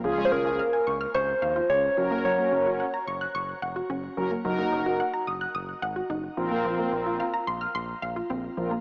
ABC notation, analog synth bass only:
X:1
M:4/4
L:1/16
Q:1/4=109
K:Bbm
V:1 name="Analog synth bass" clef=bass
D,,2 D,,3 z D,,2 D,,2 E,,2 D,,2 G,,,2- | G,,,2 G,,,3 z G,,,2 G,,,2 F,,,2 G,,,2 G,,,2 | G,,,2 G,,,3 z G,,,2 G,,,2 A,,,2 G,,,2 B,,,2- | B,,,2 B,,,3 z B,,,2 B,,,2 B,,,2 B,,,2 B,,,2 |]